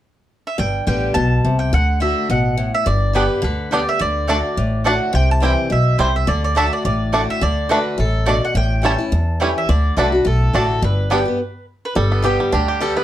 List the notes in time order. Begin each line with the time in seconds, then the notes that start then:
0.47 E5
0.58 G1 G2 G5
0.87 A1 D3 G3 B3 G4 G5
1.14 B1 B2 A5
1.44 C2 C3
1.59 G5
1.73 D2 D3 F#5
2.00 D3 A3 D4 F#4 E5
2.29 A1 B2 F#5
2.57 A2
2.75 E5
2.86 G1 G2 D5
3.13 D3 G3 B3 D4 G4 B4 D5 G5
3.42 D2 D3 B4
3.71 D3 G3 B3 D4 G4 D5 G5
3.89 E5
3.99 D2 D3 D5
4.28 D3 A3 D4 F#4 D5 A5
4.57 A1 A2
4.84 D3 A3 D4 F#4 D5 F#5 A5
5.13 C2 C3 G5
5.31 A5
5.40 E3 G3 C4 E4 C5 G5
5.45 G5
5.70 B1 B2 E5
5.98 C2 C3 G3 C4 E4 C5 G5
6.16 E5
6.27 D2 D3 D5
6.44 D5
6.55 D3 A3 D4 F#4 D5 E5 A5
6.73 D5
6.85 A1 A2 D5
7.12 D3 A3 D4 F#4 D5 A5
7.30 E5
7.41 D2 D3 D5
7.69 D3 A3 D4 F#4 B4 D5 A5
7.98 A1 F#2 A4
8.26 B2 A3 D4 F#4 D5 A5
8.45 F#5
8.55 A1 A2 G5
8.82 E3 G3 A3 C#4 E4 C#5 G5 A5
8.98 C#4 E4
9.12 E2
9.40 E3 G3 A3 C#4 E4 C#5 G5
9.58 E5
9.69 D2 D3 D5
9.97 C2 D3 A3 D4 F#4 B4 D5 A5
10.12 D4 F#4
10.25 B1 A2 A4
10.53 A1 D3 A3 D4 F#4 A4 D5 A5
10.82 G1 G2 B4
11.10 D3 G3 B3 D4 G4 D5 G5
11.25 B3 G4
11.85 B4
11.95 G1 G2 G3 A4
12.12 B3
12.23 D3 G3 B3 G4
12.40 G3
12.52 D2 D3 D4 G4
12.68 G4
12.81 D3 G3 B3 G4 A4
12.96 B3 B4